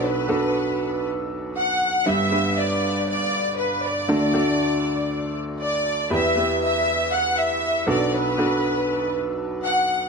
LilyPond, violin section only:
\new Staff \with { instrumentName = "Violin section" } { \time 4/4 \key b \minor \tempo 4 = 119 b'2 r4 fis''4 | e''4 d''4 d''4 b'8 d''8~ | d''2~ d''8 r8 d''4 | e''4 e''4 fis''8 e''4 d''8 |
b'2 r4 fis''4 | }